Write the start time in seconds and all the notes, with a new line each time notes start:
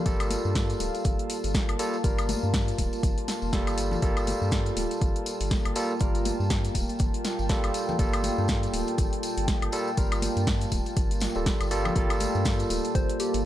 Already playing: A#3 F4 F5 A5
0.06 G1 G3 A#3 F4 A4, kick, closed hi-hat, tambourine
0.20 closed hi-hat, tambourine, high woodblock
0.30 open hi-hat, tambourine, high conga
0.45 G2, tambourine
0.55 kick, snare, closed hi-hat, tambourine
0.70 closed hi-hat, tambourine
0.80 D1, open hi-hat, tambourine, high conga
0.95 closed hi-hat, tambourine
1.04 G1, kick, closed hi-hat, tambourine
1.19 closed hi-hat
1.30 open hi-hat, tambourine
1.44 G1, open hi-hat, tambourine
1.54 kick, snare, closed hi-hat, tambourine
1.69 G1, closed hi-hat, high woodblock
1.79 G3 A#3 F4 A4, open hi-hat, tambourine
1.94 tambourine
2.04 G1 G3 A#3 F4 A#4, kick, closed hi-hat, tambourine
2.19 closed hi-hat, tambourine, high woodblock
2.29 open hi-hat, tambourine, high conga
2.43 G2, tambourine
2.54 kick, snare, closed hi-hat, tambourine
2.68 closed hi-hat, tambourine
2.78 D1, kick, open hi-hat, tambourine, high conga
2.93 closed hi-hat, tambourine
3.03 G1, kick, closed hi-hat, tambourine
3.18 closed hi-hat
3.28 snare, open hi-hat, tambourine
3.42 F1, tambourine
3.53 G3 A#3 F4 A4, kick, snare, closed hi-hat, tambourine
3.67 G1, closed hi-hat, tambourine, high woodblock
3.78 open hi-hat, tambourine
3.91 tambourine, low conga
4.02 G1 G3 A#3 F4 A4 G5, kick, closed hi-hat, tambourine
4.17 closed hi-hat, tambourine, high woodblock
4.27 open hi-hat, tambourine, high conga
4.42 G2, tambourine
4.51 kick, snare, closed hi-hat, tambourine
4.66 closed hi-hat, tambourine
4.77 D1, open hi-hat, tambourine, high conga
4.91 closed hi-hat, tambourine
5.01 G1, kick, closed hi-hat, tambourine
5.16 closed hi-hat
5.26 open hi-hat, tambourine
5.40 G1, open hi-hat, tambourine
5.51 kick, snare, closed hi-hat, tambourine
5.65 G1, closed hi-hat, high woodblock
5.75 G3 A#3 F4 A4, open hi-hat, tambourine
5.91 tambourine
5.99 G1 G3 A#3 F4 A#4, kick, closed hi-hat, tambourine
6.15 closed hi-hat, tambourine
6.25 open hi-hat, tambourine, high conga
6.40 G2, tambourine
6.50 kick, snare, closed hi-hat, tambourine
6.65 closed hi-hat, tambourine
6.74 D1, kick, open hi-hat, tambourine, high conga
6.89 closed hi-hat, tambourine
6.99 G1, kick, closed hi-hat, tambourine
7.14 closed hi-hat
7.25 snare, open hi-hat, tambourine
7.39 G1, tambourine
7.49 G3 A#3 F4 A4, kick, snare, closed hi-hat, tambourine
7.64 G1, closed hi-hat, tambourine, high woodblock
7.74 open hi-hat, tambourine
7.89 tambourine, low conga
7.99 G1 G3 A#3 F4 A4, kick, closed hi-hat, tambourine
8.13 closed hi-hat, tambourine, high woodblock
8.24 open hi-hat, tambourine, high conga
8.38 G2, tambourine
8.48 kick, snare, closed hi-hat, tambourine
8.63 closed hi-hat, tambourine
8.73 D1, open hi-hat, tambourine, high conga
8.87 closed hi-hat, tambourine
8.98 G1, kick, closed hi-hat, tambourine
9.13 closed hi-hat
9.23 open hi-hat, tambourine
9.37 G1, open hi-hat, tambourine
9.48 kick, snare, closed hi-hat, tambourine
9.62 G1, closed hi-hat, high woodblock
9.72 G3 A#3 F4 A4, open hi-hat, tambourine
9.87 tambourine
9.97 G1 G3 A#3 F4 A#4, kick, closed hi-hat, tambourine
10.12 closed hi-hat, tambourine, high woodblock
10.22 open hi-hat, tambourine, high conga
10.37 G2, closed hi-hat, tambourine
10.47 kick, snare, closed hi-hat, tambourine
10.61 closed hi-hat, tambourine
10.72 D1, kick, open hi-hat, tambourine, high conga
10.86 closed hi-hat, tambourine
10.97 G1, kick, closed hi-hat, tambourine
11.11 closed hi-hat, tambourine
11.20 snare, open hi-hat, tambourine
11.35 D1 G3 A#3 F4 A4, tambourine
11.46 kick, snare, closed hi-hat, tambourine
11.61 G1, closed hi-hat, tambourine, high woodblock
11.71 G3 A#3 F4 A4, open hi-hat, tambourine
11.85 tambourine, low conga, high woodblock
11.95 G1 G3 A#3 F4 A4 F5, kick, closed hi-hat, tambourine
12.10 closed hi-hat, tambourine, high woodblock
12.20 open hi-hat, tambourine, high conga
12.35 G2, tambourine
12.45 kick, snare, closed hi-hat, tambourine
12.59 closed hi-hat, tambourine
12.70 D1, open hi-hat, tambourine, high conga
12.85 closed hi-hat, tambourine
12.95 G1 C5, kick, closed hi-hat, tambourine
13.09 closed hi-hat
13.20 G4, open hi-hat, tambourine
13.34 G1, open hi-hat, tambourine